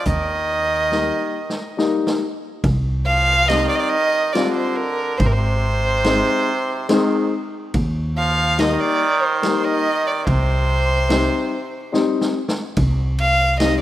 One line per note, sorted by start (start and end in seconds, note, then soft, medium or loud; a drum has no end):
0.05 1.09 D#2 loud
0.05 1.78 D#3 medium
0.05 1.79 D#5 medium
0.05 kick medium
0.05 closed hi-hat soft
0.92 1.35 G3 medium
0.92 1.35 A#3 soft
0.92 1.36 D#4 medium
0.92 snare soft
1.50 snare soft
1.77 2.21 G3 medium
1.77 2.21 A#3 medium
1.77 2.21 D#4 medium
1.77 snare soft
2.07 snare medium
2.64 3.66 C2 loud
2.64 kick medium
2.64 ride soft
3.06 3.50 F3 medium
3.06 3.50 F5 loud
3.48 3.57 D#3 medium
3.48 3.92 G3 medium
3.48 3.92 C4 medium
3.48 3.92 D#4 medium
3.48 3.69 D#5 loud
3.48 snare medium
3.48 ride medium
3.56 3.64 D3 medium
3.63 4.34 D#3 loud
3.69 3.76 D5 medium
3.75 3.81 D#5 medium
3.79 3.90 D5 medium
3.89 4.34 D#5 loud
4.32 5.23 D3 medium
4.32 4.77 G3 medium
4.32 4.77 C4 medium
4.32 4.78 F4 medium
4.32 4.54 D5 medium
4.32 snare medium
4.32 ride soft
4.55 4.77 C5 medium
4.76 5.19 A#4 medium
5.18 6.21 G#1 loud
5.18 5.27 C5 medium
5.18 kick medium
5.18 ride soft
5.22 5.34 C3 medium
5.26 5.33 A#4 medium
5.31 7.31 C5 loud
5.36 6.87 C3 medium
6.04 6.47 G#3 medium
6.04 6.47 C4 medium
6.04 6.48 D#4 medium
6.04 snare medium
6.04 ride soft
6.89 7.29 D#3 medium
6.89 7.31 G#3 medium
6.89 7.32 C4 medium
6.89 7.32 D#4 medium
6.89 snare medium
6.89 ride soft
7.74 8.75 D#2 loud
7.74 kick medium
7.74 ride medium
8.17 8.56 F3 medium
8.17 8.61 F5 loud
8.58 9.60 D#3 loud
8.58 9.00 G3 medium
8.58 9.01 A#3 medium
8.58 9.01 D#4 medium
8.58 8.73 D#5 medium
8.58 snare medium
8.58 ride medium
8.73 8.81 D#5 medium
8.80 9.23 D5 medium
9.22 9.66 C5 medium
9.42 9.84 G3 medium
9.42 9.85 A#3 medium
9.42 9.85 D#4 medium
9.42 snare medium
9.42 ride soft
9.64 10.29 D#3 medium
9.64 10.08 D#5 loud
10.07 10.27 D5 medium
10.27 11.27 C2 loud
10.27 11.95 C3 medium
10.27 11.91 C5 loud
10.27 kick medium
10.27 ride soft
11.09 11.52 G3 medium
11.09 11.52 C4 medium
11.09 11.52 D#4 medium
11.09 snare medium
11.09 ride soft
11.92 12.35 G3 medium
11.92 12.35 C4 medium
11.92 12.36 D#4 medium
11.92 snare soft
12.21 snare medium
12.48 snare medium
12.77 13.77 C2 loud
12.77 kick medium
12.77 ride medium
13.18 13.59 F5 loud
13.18 ride soft
13.60 13.81 G3 medium
13.60 13.81 C4 medium
13.60 13.81 D#4 medium
13.60 13.80 D#5 medium
13.60 snare medium
13.60 ride medium